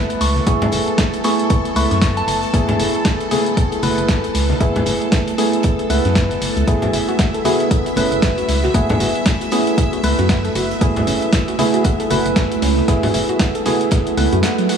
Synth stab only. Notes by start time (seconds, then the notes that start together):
Already playing: A3 B3 E4 B4
0.47 A3 B3 E4 G#4
1.24 A3 B3 E4 G#4
1.76 A3 B3 E4 B4
2.54 A3 B3 E4 G#4
3.31 A3 B3 E4 G#4
3.83 A3 B3 E4 B4
4.61 A3 B3 E4 G#4
5.38 A3 B3 E4 G#4
5.90 A3 B3 E4 B4
6.67 A3 B3 E4 G#4
7.45 A3 B3 E4 G#4
7.97 A3 B3 E4 B4
8.74 A3 B3 E4 G#4
9.52 A3 B3 E4 G#4
10.04 A3 B3 E4 B4
10.81 A3 B3 E4 G#4
11.59 A3 B3 E4 G#4
12.11 A3 B3 E4 B4
12.88 A3 B3 E4 G#4
13.66 A3 B3 E4 G#4
14.17 A3 B3 E4 B4